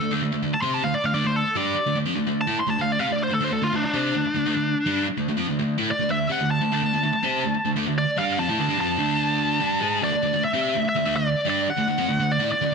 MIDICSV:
0, 0, Header, 1, 4, 480
1, 0, Start_track
1, 0, Tempo, 412939
1, 128, Time_signature, 4, 2, 24, 8
1, 14815, End_track
2, 0, Start_track
2, 0, Title_t, "Lead electric guitar"
2, 0, Program_c, 0, 29
2, 0, Note_on_c, 0, 69, 100
2, 122, Note_off_c, 0, 69, 0
2, 629, Note_on_c, 0, 81, 118
2, 710, Note_off_c, 0, 81, 0
2, 715, Note_on_c, 0, 84, 87
2, 860, Note_off_c, 0, 84, 0
2, 860, Note_on_c, 0, 81, 101
2, 971, Note_off_c, 0, 81, 0
2, 974, Note_on_c, 0, 77, 81
2, 1097, Note_off_c, 0, 77, 0
2, 1097, Note_on_c, 0, 74, 88
2, 1225, Note_off_c, 0, 74, 0
2, 1225, Note_on_c, 0, 77, 89
2, 1324, Note_off_c, 0, 77, 0
2, 1324, Note_on_c, 0, 74, 104
2, 1470, Note_off_c, 0, 74, 0
2, 1470, Note_on_c, 0, 72, 98
2, 1581, Note_off_c, 0, 72, 0
2, 1581, Note_on_c, 0, 69, 86
2, 1808, Note_off_c, 0, 69, 0
2, 1823, Note_on_c, 0, 74, 105
2, 2282, Note_off_c, 0, 74, 0
2, 2803, Note_on_c, 0, 81, 120
2, 3019, Note_off_c, 0, 81, 0
2, 3023, Note_on_c, 0, 84, 87
2, 3133, Note_off_c, 0, 84, 0
2, 3138, Note_on_c, 0, 81, 93
2, 3251, Note_off_c, 0, 81, 0
2, 3268, Note_on_c, 0, 77, 88
2, 3376, Note_off_c, 0, 77, 0
2, 3395, Note_on_c, 0, 74, 98
2, 3488, Note_off_c, 0, 74, 0
2, 3492, Note_on_c, 0, 77, 91
2, 3629, Note_off_c, 0, 77, 0
2, 3629, Note_on_c, 0, 74, 103
2, 3737, Note_off_c, 0, 74, 0
2, 3759, Note_on_c, 0, 72, 97
2, 3862, Note_off_c, 0, 72, 0
2, 3888, Note_on_c, 0, 69, 88
2, 4001, Note_off_c, 0, 69, 0
2, 4001, Note_on_c, 0, 72, 103
2, 4098, Note_off_c, 0, 72, 0
2, 4098, Note_on_c, 0, 69, 109
2, 4212, Note_off_c, 0, 69, 0
2, 4223, Note_on_c, 0, 65, 89
2, 4334, Note_off_c, 0, 65, 0
2, 4365, Note_on_c, 0, 62, 94
2, 4466, Note_off_c, 0, 62, 0
2, 4477, Note_on_c, 0, 62, 114
2, 5864, Note_off_c, 0, 62, 0
2, 6867, Note_on_c, 0, 74, 96
2, 7094, Note_off_c, 0, 74, 0
2, 7106, Note_on_c, 0, 76, 100
2, 7334, Note_off_c, 0, 76, 0
2, 7339, Note_on_c, 0, 78, 90
2, 7564, Note_off_c, 0, 78, 0
2, 7569, Note_on_c, 0, 81, 93
2, 8969, Note_off_c, 0, 81, 0
2, 9279, Note_on_c, 0, 74, 111
2, 9501, Note_off_c, 0, 74, 0
2, 9514, Note_on_c, 0, 77, 89
2, 9738, Note_off_c, 0, 77, 0
2, 9754, Note_on_c, 0, 81, 108
2, 10211, Note_off_c, 0, 81, 0
2, 10236, Note_on_c, 0, 81, 127
2, 11621, Note_off_c, 0, 81, 0
2, 11667, Note_on_c, 0, 74, 103
2, 12135, Note_off_c, 0, 74, 0
2, 12139, Note_on_c, 0, 76, 113
2, 12630, Note_off_c, 0, 76, 0
2, 12656, Note_on_c, 0, 76, 96
2, 12970, Note_off_c, 0, 76, 0
2, 12977, Note_on_c, 0, 74, 104
2, 13309, Note_off_c, 0, 74, 0
2, 13361, Note_on_c, 0, 74, 87
2, 13592, Note_off_c, 0, 74, 0
2, 13599, Note_on_c, 0, 78, 127
2, 14316, Note_on_c, 0, 74, 99
2, 14324, Note_off_c, 0, 78, 0
2, 14535, Note_off_c, 0, 74, 0
2, 14549, Note_on_c, 0, 74, 100
2, 14815, Note_off_c, 0, 74, 0
2, 14815, End_track
3, 0, Start_track
3, 0, Title_t, "Distorted electric guitar"
3, 0, Program_c, 1, 30
3, 10, Note_on_c, 1, 57, 72
3, 11, Note_on_c, 1, 50, 61
3, 114, Note_off_c, 1, 50, 0
3, 120, Note_off_c, 1, 57, 0
3, 128, Note_on_c, 1, 50, 96
3, 134, Note_on_c, 1, 57, 106
3, 241, Note_off_c, 1, 50, 0
3, 244, Note_off_c, 1, 57, 0
3, 253, Note_on_c, 1, 50, 62
3, 264, Note_on_c, 1, 57, 71
3, 358, Note_off_c, 1, 50, 0
3, 364, Note_off_c, 1, 57, 0
3, 372, Note_on_c, 1, 50, 59
3, 378, Note_on_c, 1, 57, 73
3, 478, Note_off_c, 1, 57, 0
3, 483, Note_off_c, 1, 50, 0
3, 492, Note_on_c, 1, 57, 72
3, 497, Note_on_c, 1, 50, 75
3, 602, Note_off_c, 1, 50, 0
3, 610, Note_off_c, 1, 57, 0
3, 723, Note_on_c, 1, 60, 99
3, 731, Note_on_c, 1, 67, 97
3, 732, Note_on_c, 1, 72, 99
3, 959, Note_off_c, 1, 60, 0
3, 962, Note_off_c, 1, 67, 0
3, 963, Note_off_c, 1, 72, 0
3, 968, Note_on_c, 1, 50, 62
3, 969, Note_on_c, 1, 57, 69
3, 1080, Note_off_c, 1, 50, 0
3, 1089, Note_off_c, 1, 57, 0
3, 1208, Note_on_c, 1, 50, 63
3, 1212, Note_on_c, 1, 57, 70
3, 1310, Note_off_c, 1, 50, 0
3, 1312, Note_off_c, 1, 57, 0
3, 1324, Note_on_c, 1, 50, 101
3, 1325, Note_on_c, 1, 57, 113
3, 1435, Note_off_c, 1, 50, 0
3, 1440, Note_off_c, 1, 57, 0
3, 1449, Note_on_c, 1, 50, 57
3, 1453, Note_on_c, 1, 57, 69
3, 1641, Note_off_c, 1, 50, 0
3, 1643, Note_off_c, 1, 57, 0
3, 1807, Note_on_c, 1, 55, 81
3, 1809, Note_on_c, 1, 62, 84
3, 1814, Note_on_c, 1, 67, 93
3, 2041, Note_off_c, 1, 55, 0
3, 2042, Note_off_c, 1, 62, 0
3, 2044, Note_off_c, 1, 67, 0
3, 2170, Note_on_c, 1, 57, 74
3, 2171, Note_on_c, 1, 50, 64
3, 2264, Note_off_c, 1, 57, 0
3, 2267, Note_off_c, 1, 50, 0
3, 2278, Note_on_c, 1, 57, 74
3, 2281, Note_on_c, 1, 50, 64
3, 2387, Note_off_c, 1, 50, 0
3, 2388, Note_off_c, 1, 57, 0
3, 2392, Note_on_c, 1, 53, 93
3, 2393, Note_on_c, 1, 60, 113
3, 2501, Note_off_c, 1, 53, 0
3, 2506, Note_on_c, 1, 50, 62
3, 2510, Note_off_c, 1, 60, 0
3, 2514, Note_on_c, 1, 57, 75
3, 2624, Note_off_c, 1, 50, 0
3, 2629, Note_off_c, 1, 57, 0
3, 2638, Note_on_c, 1, 50, 62
3, 2643, Note_on_c, 1, 57, 66
3, 2836, Note_off_c, 1, 50, 0
3, 2839, Note_off_c, 1, 57, 0
3, 2874, Note_on_c, 1, 57, 80
3, 2874, Note_on_c, 1, 64, 95
3, 2995, Note_off_c, 1, 57, 0
3, 2995, Note_off_c, 1, 64, 0
3, 3102, Note_on_c, 1, 50, 66
3, 3110, Note_on_c, 1, 57, 71
3, 3225, Note_off_c, 1, 50, 0
3, 3228, Note_off_c, 1, 57, 0
3, 3239, Note_on_c, 1, 50, 73
3, 3241, Note_on_c, 1, 57, 74
3, 3437, Note_off_c, 1, 50, 0
3, 3438, Note_off_c, 1, 57, 0
3, 3475, Note_on_c, 1, 60, 96
3, 3478, Note_on_c, 1, 67, 97
3, 3585, Note_off_c, 1, 60, 0
3, 3589, Note_on_c, 1, 57, 65
3, 3590, Note_on_c, 1, 50, 60
3, 3598, Note_off_c, 1, 67, 0
3, 3793, Note_off_c, 1, 50, 0
3, 3793, Note_off_c, 1, 57, 0
3, 3831, Note_on_c, 1, 50, 60
3, 3842, Note_on_c, 1, 57, 67
3, 3937, Note_off_c, 1, 50, 0
3, 3944, Note_off_c, 1, 57, 0
3, 3951, Note_on_c, 1, 50, 82
3, 3958, Note_on_c, 1, 57, 100
3, 4068, Note_off_c, 1, 57, 0
3, 4070, Note_off_c, 1, 50, 0
3, 4082, Note_on_c, 1, 57, 69
3, 4084, Note_on_c, 1, 50, 62
3, 4191, Note_off_c, 1, 50, 0
3, 4195, Note_off_c, 1, 57, 0
3, 4205, Note_on_c, 1, 50, 63
3, 4209, Note_on_c, 1, 57, 72
3, 4317, Note_off_c, 1, 50, 0
3, 4322, Note_off_c, 1, 57, 0
3, 4331, Note_on_c, 1, 50, 72
3, 4336, Note_on_c, 1, 57, 85
3, 4444, Note_off_c, 1, 50, 0
3, 4454, Note_off_c, 1, 57, 0
3, 4576, Note_on_c, 1, 60, 97
3, 4580, Note_on_c, 1, 67, 93
3, 4587, Note_on_c, 1, 72, 105
3, 4808, Note_off_c, 1, 60, 0
3, 4809, Note_off_c, 1, 67, 0
3, 4813, Note_off_c, 1, 72, 0
3, 4818, Note_on_c, 1, 50, 55
3, 4821, Note_on_c, 1, 57, 71
3, 4922, Note_off_c, 1, 50, 0
3, 4937, Note_off_c, 1, 57, 0
3, 5045, Note_on_c, 1, 50, 62
3, 5051, Note_on_c, 1, 57, 78
3, 5165, Note_off_c, 1, 50, 0
3, 5168, Note_off_c, 1, 57, 0
3, 5179, Note_on_c, 1, 50, 89
3, 5182, Note_on_c, 1, 57, 98
3, 5277, Note_off_c, 1, 50, 0
3, 5286, Note_off_c, 1, 57, 0
3, 5291, Note_on_c, 1, 50, 62
3, 5300, Note_on_c, 1, 57, 67
3, 5484, Note_off_c, 1, 50, 0
3, 5489, Note_off_c, 1, 57, 0
3, 5648, Note_on_c, 1, 55, 96
3, 5654, Note_on_c, 1, 62, 93
3, 5654, Note_on_c, 1, 67, 95
3, 5884, Note_off_c, 1, 55, 0
3, 5887, Note_off_c, 1, 62, 0
3, 5887, Note_off_c, 1, 67, 0
3, 6010, Note_on_c, 1, 50, 70
3, 6010, Note_on_c, 1, 57, 69
3, 6125, Note_off_c, 1, 50, 0
3, 6128, Note_off_c, 1, 57, 0
3, 6139, Note_on_c, 1, 50, 74
3, 6142, Note_on_c, 1, 57, 79
3, 6236, Note_off_c, 1, 50, 0
3, 6241, Note_on_c, 1, 53, 95
3, 6243, Note_off_c, 1, 57, 0
3, 6248, Note_on_c, 1, 60, 104
3, 6361, Note_off_c, 1, 53, 0
3, 6364, Note_off_c, 1, 60, 0
3, 6370, Note_on_c, 1, 50, 64
3, 6375, Note_on_c, 1, 57, 73
3, 6484, Note_off_c, 1, 50, 0
3, 6484, Note_off_c, 1, 57, 0
3, 6498, Note_on_c, 1, 50, 67
3, 6498, Note_on_c, 1, 57, 74
3, 6688, Note_off_c, 1, 50, 0
3, 6689, Note_off_c, 1, 57, 0
3, 6720, Note_on_c, 1, 64, 105
3, 6722, Note_on_c, 1, 57, 91
3, 6840, Note_off_c, 1, 64, 0
3, 6841, Note_off_c, 1, 57, 0
3, 6964, Note_on_c, 1, 50, 54
3, 6965, Note_on_c, 1, 57, 74
3, 7068, Note_off_c, 1, 50, 0
3, 7069, Note_off_c, 1, 57, 0
3, 7082, Note_on_c, 1, 50, 77
3, 7083, Note_on_c, 1, 57, 70
3, 7281, Note_off_c, 1, 50, 0
3, 7281, Note_off_c, 1, 57, 0
3, 7314, Note_on_c, 1, 60, 91
3, 7320, Note_on_c, 1, 67, 98
3, 7437, Note_off_c, 1, 60, 0
3, 7439, Note_on_c, 1, 50, 67
3, 7441, Note_off_c, 1, 67, 0
3, 7444, Note_on_c, 1, 57, 67
3, 7639, Note_off_c, 1, 50, 0
3, 7642, Note_off_c, 1, 57, 0
3, 7683, Note_on_c, 1, 50, 57
3, 7688, Note_on_c, 1, 57, 76
3, 7794, Note_off_c, 1, 50, 0
3, 7799, Note_off_c, 1, 57, 0
3, 7808, Note_on_c, 1, 50, 99
3, 7813, Note_on_c, 1, 57, 104
3, 7911, Note_off_c, 1, 50, 0
3, 7921, Note_off_c, 1, 57, 0
3, 7925, Note_on_c, 1, 50, 61
3, 7935, Note_on_c, 1, 57, 79
3, 8038, Note_off_c, 1, 50, 0
3, 8049, Note_off_c, 1, 57, 0
3, 8052, Note_on_c, 1, 50, 72
3, 8063, Note_on_c, 1, 57, 81
3, 8156, Note_off_c, 1, 50, 0
3, 8162, Note_off_c, 1, 57, 0
3, 8170, Note_on_c, 1, 50, 75
3, 8176, Note_on_c, 1, 57, 73
3, 8272, Note_off_c, 1, 50, 0
3, 8296, Note_off_c, 1, 57, 0
3, 8401, Note_on_c, 1, 60, 86
3, 8411, Note_on_c, 1, 67, 100
3, 8413, Note_on_c, 1, 72, 105
3, 8641, Note_off_c, 1, 60, 0
3, 8641, Note_on_c, 1, 50, 63
3, 8646, Note_off_c, 1, 67, 0
3, 8647, Note_off_c, 1, 72, 0
3, 8649, Note_on_c, 1, 57, 68
3, 8755, Note_off_c, 1, 50, 0
3, 8772, Note_off_c, 1, 57, 0
3, 8889, Note_on_c, 1, 50, 75
3, 8890, Note_on_c, 1, 57, 66
3, 9004, Note_off_c, 1, 50, 0
3, 9009, Note_off_c, 1, 57, 0
3, 9018, Note_on_c, 1, 50, 91
3, 9023, Note_on_c, 1, 57, 119
3, 9126, Note_off_c, 1, 57, 0
3, 9130, Note_off_c, 1, 50, 0
3, 9140, Note_on_c, 1, 57, 59
3, 9142, Note_on_c, 1, 50, 73
3, 9330, Note_off_c, 1, 57, 0
3, 9331, Note_off_c, 1, 50, 0
3, 9492, Note_on_c, 1, 55, 84
3, 9502, Note_on_c, 1, 62, 92
3, 9507, Note_on_c, 1, 67, 92
3, 9727, Note_off_c, 1, 55, 0
3, 9731, Note_off_c, 1, 62, 0
3, 9734, Note_off_c, 1, 67, 0
3, 9739, Note_on_c, 1, 53, 81
3, 9740, Note_on_c, 1, 60, 104
3, 9850, Note_off_c, 1, 53, 0
3, 9850, Note_off_c, 1, 60, 0
3, 9865, Note_on_c, 1, 57, 96
3, 9868, Note_on_c, 1, 64, 111
3, 9973, Note_off_c, 1, 57, 0
3, 9975, Note_off_c, 1, 64, 0
3, 9976, Note_on_c, 1, 50, 106
3, 9987, Note_on_c, 1, 57, 114
3, 10088, Note_off_c, 1, 50, 0
3, 10089, Note_off_c, 1, 57, 0
3, 10094, Note_on_c, 1, 55, 103
3, 10095, Note_on_c, 1, 62, 112
3, 10203, Note_on_c, 1, 53, 85
3, 10205, Note_off_c, 1, 55, 0
3, 10205, Note_off_c, 1, 62, 0
3, 10209, Note_on_c, 1, 60, 105
3, 10209, Note_on_c, 1, 65, 102
3, 10434, Note_off_c, 1, 53, 0
3, 10438, Note_on_c, 1, 50, 98
3, 10442, Note_off_c, 1, 60, 0
3, 10442, Note_off_c, 1, 65, 0
3, 10446, Note_on_c, 1, 62, 110
3, 10447, Note_on_c, 1, 57, 106
3, 11150, Note_off_c, 1, 62, 0
3, 11154, Note_off_c, 1, 57, 0
3, 11159, Note_off_c, 1, 50, 0
3, 11159, Note_on_c, 1, 55, 92
3, 11164, Note_on_c, 1, 62, 89
3, 11168, Note_on_c, 1, 67, 97
3, 11396, Note_off_c, 1, 55, 0
3, 11400, Note_off_c, 1, 62, 0
3, 11401, Note_on_c, 1, 56, 90
3, 11404, Note_off_c, 1, 67, 0
3, 11405, Note_on_c, 1, 63, 93
3, 11413, Note_on_c, 1, 68, 101
3, 11640, Note_off_c, 1, 56, 0
3, 11640, Note_on_c, 1, 50, 96
3, 11642, Note_off_c, 1, 63, 0
3, 11646, Note_off_c, 1, 68, 0
3, 11648, Note_on_c, 1, 57, 111
3, 11757, Note_off_c, 1, 50, 0
3, 11760, Note_off_c, 1, 57, 0
3, 11771, Note_on_c, 1, 50, 63
3, 11774, Note_on_c, 1, 57, 68
3, 11873, Note_off_c, 1, 57, 0
3, 11875, Note_off_c, 1, 50, 0
3, 11887, Note_on_c, 1, 57, 75
3, 11889, Note_on_c, 1, 50, 68
3, 11994, Note_off_c, 1, 50, 0
3, 12003, Note_off_c, 1, 57, 0
3, 12008, Note_on_c, 1, 50, 73
3, 12017, Note_on_c, 1, 57, 82
3, 12118, Note_off_c, 1, 50, 0
3, 12135, Note_off_c, 1, 57, 0
3, 12246, Note_on_c, 1, 60, 97
3, 12258, Note_on_c, 1, 72, 95
3, 12259, Note_on_c, 1, 67, 98
3, 12482, Note_off_c, 1, 60, 0
3, 12488, Note_off_c, 1, 67, 0
3, 12488, Note_off_c, 1, 72, 0
3, 12501, Note_on_c, 1, 50, 57
3, 12501, Note_on_c, 1, 57, 75
3, 12597, Note_off_c, 1, 50, 0
3, 12617, Note_off_c, 1, 57, 0
3, 12729, Note_on_c, 1, 50, 62
3, 12742, Note_on_c, 1, 57, 73
3, 12837, Note_off_c, 1, 50, 0
3, 12842, Note_off_c, 1, 57, 0
3, 12851, Note_on_c, 1, 50, 97
3, 12856, Note_on_c, 1, 57, 112
3, 12953, Note_off_c, 1, 57, 0
3, 12956, Note_off_c, 1, 50, 0
3, 12967, Note_on_c, 1, 57, 68
3, 12970, Note_on_c, 1, 50, 60
3, 13161, Note_off_c, 1, 57, 0
3, 13162, Note_off_c, 1, 50, 0
3, 13309, Note_on_c, 1, 55, 89
3, 13321, Note_on_c, 1, 67, 98
3, 13322, Note_on_c, 1, 62, 94
3, 13552, Note_off_c, 1, 55, 0
3, 13558, Note_off_c, 1, 67, 0
3, 13559, Note_off_c, 1, 62, 0
3, 13675, Note_on_c, 1, 50, 60
3, 13686, Note_on_c, 1, 57, 75
3, 13789, Note_off_c, 1, 50, 0
3, 13794, Note_off_c, 1, 57, 0
3, 13803, Note_on_c, 1, 50, 60
3, 13808, Note_on_c, 1, 57, 81
3, 13919, Note_off_c, 1, 50, 0
3, 13923, Note_on_c, 1, 53, 97
3, 13924, Note_off_c, 1, 57, 0
3, 13929, Note_on_c, 1, 60, 104
3, 14039, Note_off_c, 1, 53, 0
3, 14042, Note_off_c, 1, 60, 0
3, 14048, Note_on_c, 1, 50, 73
3, 14053, Note_on_c, 1, 57, 74
3, 14162, Note_off_c, 1, 50, 0
3, 14163, Note_off_c, 1, 57, 0
3, 14176, Note_on_c, 1, 50, 65
3, 14177, Note_on_c, 1, 57, 68
3, 14364, Note_off_c, 1, 50, 0
3, 14365, Note_off_c, 1, 57, 0
3, 14407, Note_on_c, 1, 57, 84
3, 14417, Note_on_c, 1, 64, 99
3, 14521, Note_off_c, 1, 57, 0
3, 14525, Note_off_c, 1, 64, 0
3, 14660, Note_on_c, 1, 50, 70
3, 14668, Note_on_c, 1, 57, 75
3, 14773, Note_off_c, 1, 57, 0
3, 14774, Note_off_c, 1, 50, 0
3, 14815, End_track
4, 0, Start_track
4, 0, Title_t, "Muted distorted electric guitar strokes"
4, 616, Note_on_c, 9, 29, 60
4, 733, Note_off_c, 9, 29, 0
4, 1094, Note_on_c, 9, 29, 54
4, 1210, Note_off_c, 9, 29, 0
4, 2034, Note_on_c, 9, 29, 57
4, 2150, Note_off_c, 9, 29, 0
4, 2992, Note_on_c, 9, 29, 54
4, 3109, Note_off_c, 9, 29, 0
4, 4457, Note_on_c, 9, 29, 58
4, 4574, Note_off_c, 9, 29, 0
4, 4936, Note_on_c, 9, 29, 50
4, 5052, Note_off_c, 9, 29, 0
4, 5888, Note_on_c, 9, 29, 65
4, 6004, Note_off_c, 9, 29, 0
4, 6854, Note_on_c, 9, 29, 50
4, 6970, Note_off_c, 9, 29, 0
4, 8286, Note_on_c, 9, 29, 62
4, 8402, Note_off_c, 9, 29, 0
4, 8769, Note_on_c, 9, 29, 57
4, 8885, Note_off_c, 9, 29, 0
4, 12132, Note_on_c, 9, 29, 60
4, 12248, Note_off_c, 9, 29, 0
4, 12611, Note_on_c, 9, 29, 55
4, 12727, Note_off_c, 9, 29, 0
4, 13572, Note_on_c, 9, 29, 56
4, 13688, Note_off_c, 9, 29, 0
4, 14546, Note_on_c, 9, 29, 58
4, 14662, Note_off_c, 9, 29, 0
4, 14815, End_track
0, 0, End_of_file